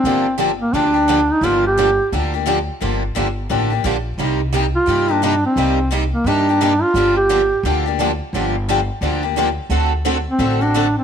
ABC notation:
X:1
M:4/4
L:1/16
Q:"Swing" 1/4=174
K:Gm
V:1 name="Duduk"
C4 z2 B,2 D6 E2 | F2 G6 z8 | z16 | z6 F4 D2 D2 C2- |
C4 z2 B,2 D6 F2- | F2 G6 z8 | z16 | z6 C4 D4 C2 |]
V:2 name="Steel-string acoustic guitar"
[D,F,B,DG]2 z2 [D,F,B,DG] z3 [D,F,B,DG]2 [B,DG]2 [D,F,B,DG] z3 | [D,F,B,DG]2 z2 [D,F,B,DG] z3 [D,F,B,DG]2 [B,DG]2 [D,F,B,DG] z3 | [D,F,B,DG]2 z2 [D,F,B,DG] z3 [D,F,B,DG]2 [B,DG]2 [D,F,B,DG] z3 | [C,G,B,EG]2 z2 [C,G,B,EG] z3 [C,G,B,EG]2 [B,EG]2 [C,G,B,EG] z3 |
[C,G,B,EG]2 z2 [C,G,B,EG] z3 [C,G,B,EG]2 [B,EG]2 [C,G,B,EG] z3 | [D,F,B,DG]2 z2 [D,F,B,DG] z3 [D,F,B,DG]2 [B,DG]2 [D,F,B,DG] z3 | [D,F,B,DG]2 z2 [D,F,B,DG] z3 [D,F,B,DG]2 [B,DG]2 [D,F,B,DG] z3 | [D,A,C^FA]2 z2 [D,A,CFA] z3 [D,A,CFA]2 [CFA]2 [D,A,CFA] z3 |]
V:3 name="Steel-string acoustic guitar"
[D,F,B,DG]2 z2 [D,F,B,DG] z3 [D,F,B,DG]2 z2 [D,F,B,DG] z3 | [D,F,B,DG]2 z2 [D,F,B,DG] z3 [D,F,B,DG]2 z2 [D,F,B,DG] z3 | [D,F,B,DG]2 z2 [D,F,B,DG] z3 [D,F,B,DG]2 z2 [D,F,B,DG] z3 | [C,G,B,EG]2 z2 [C,G,B,EG] z3 [C,G,B,EG]2 z2 [C,G,B,EG] z3 |
[C,G,B,EG]2 z2 [C,G,B,EG] z3 [C,G,B,EG]2 z2 [C,G,B,EG] z3 | [D,F,B,DG]2 z2 [D,F,B,DG] z3 [D,F,B,DG]2 z2 [D,F,B,DG] z3 | [D,F,B,DG]2 z2 [D,F,B,DG] z3 [D,F,B,DG]2 z2 [D,F,B,DG] z3 | [D,A,C^FA]2 z2 [D,A,CFA] z3 [D,A,CFA]2 z2 [D,A,CFA] z3 |]
V:4 name="Upright bass" clef=bass
G,,,8 D,,8 | G,,,8 D,,8 | G,,,4 G,,,4 A,,,4 B,,,4 | C,,8 G,,8 |
C,,8 G,,8 | G,,,8 D,,8 | G,,,8 D,,8 | D,,8 A,,,8 |]